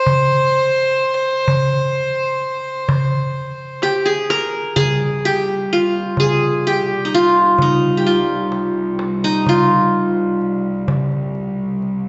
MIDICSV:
0, 0, Header, 1, 5, 480
1, 0, Start_track
1, 0, Tempo, 941915
1, 28, Time_signature, 10, 3, 24, 8
1, 6159, End_track
2, 0, Start_track
2, 0, Title_t, "Violin"
2, 0, Program_c, 0, 40
2, 0, Note_on_c, 0, 72, 86
2, 1950, Note_off_c, 0, 72, 0
2, 6159, End_track
3, 0, Start_track
3, 0, Title_t, "Qanun"
3, 0, Program_c, 1, 107
3, 1951, Note_on_c, 1, 67, 77
3, 2066, Note_on_c, 1, 68, 75
3, 2097, Note_off_c, 1, 67, 0
3, 2192, Note_on_c, 1, 70, 85
3, 2424, Note_off_c, 1, 68, 0
3, 2426, Note_on_c, 1, 68, 93
3, 2677, Note_on_c, 1, 67, 86
3, 2707, Note_off_c, 1, 68, 0
3, 2769, Note_off_c, 1, 70, 0
3, 2919, Note_on_c, 1, 65, 73
3, 3158, Note_on_c, 1, 68, 81
3, 3189, Note_off_c, 1, 67, 0
3, 3398, Note_on_c, 1, 67, 77
3, 3429, Note_off_c, 1, 68, 0
3, 3593, Note_on_c, 1, 63, 50
3, 3605, Note_off_c, 1, 65, 0
3, 3641, Note_on_c, 1, 65, 81
3, 3881, Note_off_c, 1, 63, 0
3, 3883, Note_on_c, 1, 63, 74
3, 4038, Note_off_c, 1, 67, 0
3, 4063, Note_on_c, 1, 67, 59
3, 4108, Note_off_c, 1, 65, 0
3, 4110, Note_on_c, 1, 65, 63
3, 4619, Note_off_c, 1, 63, 0
3, 4703, Note_off_c, 1, 67, 0
3, 4709, Note_on_c, 1, 63, 74
3, 4796, Note_off_c, 1, 65, 0
3, 4835, Note_on_c, 1, 65, 81
3, 5446, Note_off_c, 1, 63, 0
3, 5769, Note_off_c, 1, 65, 0
3, 6159, End_track
4, 0, Start_track
4, 0, Title_t, "Cello section"
4, 0, Program_c, 2, 48
4, 2427, Note_on_c, 2, 36, 61
4, 6159, Note_off_c, 2, 36, 0
4, 6159, End_track
5, 0, Start_track
5, 0, Title_t, "Darbuka"
5, 33, Note_on_c, 9, 64, 93
5, 84, Note_off_c, 9, 64, 0
5, 397, Note_on_c, 9, 62, 28
5, 448, Note_off_c, 9, 62, 0
5, 515, Note_on_c, 9, 62, 27
5, 566, Note_off_c, 9, 62, 0
5, 752, Note_on_c, 9, 64, 101
5, 803, Note_off_c, 9, 64, 0
5, 877, Note_on_c, 9, 62, 28
5, 928, Note_off_c, 9, 62, 0
5, 994, Note_on_c, 9, 62, 28
5, 1045, Note_off_c, 9, 62, 0
5, 1231, Note_on_c, 9, 62, 29
5, 1282, Note_off_c, 9, 62, 0
5, 1352, Note_on_c, 9, 62, 25
5, 1402, Note_off_c, 9, 62, 0
5, 1471, Note_on_c, 9, 64, 104
5, 1521, Note_off_c, 9, 64, 0
5, 1948, Note_on_c, 9, 63, 61
5, 1999, Note_off_c, 9, 63, 0
5, 2192, Note_on_c, 9, 63, 65
5, 2242, Note_off_c, 9, 63, 0
5, 2427, Note_on_c, 9, 64, 82
5, 2478, Note_off_c, 9, 64, 0
5, 2905, Note_on_c, 9, 62, 24
5, 2956, Note_off_c, 9, 62, 0
5, 3145, Note_on_c, 9, 64, 80
5, 3196, Note_off_c, 9, 64, 0
5, 3266, Note_on_c, 9, 62, 24
5, 3317, Note_off_c, 9, 62, 0
5, 3865, Note_on_c, 9, 64, 82
5, 3916, Note_off_c, 9, 64, 0
5, 4341, Note_on_c, 9, 63, 52
5, 4392, Note_off_c, 9, 63, 0
5, 4582, Note_on_c, 9, 63, 58
5, 4632, Note_off_c, 9, 63, 0
5, 4823, Note_on_c, 9, 64, 68
5, 4874, Note_off_c, 9, 64, 0
5, 5306, Note_on_c, 9, 62, 24
5, 5357, Note_off_c, 9, 62, 0
5, 5544, Note_on_c, 9, 64, 84
5, 5595, Note_off_c, 9, 64, 0
5, 5665, Note_on_c, 9, 62, 24
5, 5716, Note_off_c, 9, 62, 0
5, 5783, Note_on_c, 9, 62, 25
5, 5834, Note_off_c, 9, 62, 0
5, 6025, Note_on_c, 9, 62, 28
5, 6076, Note_off_c, 9, 62, 0
5, 6159, End_track
0, 0, End_of_file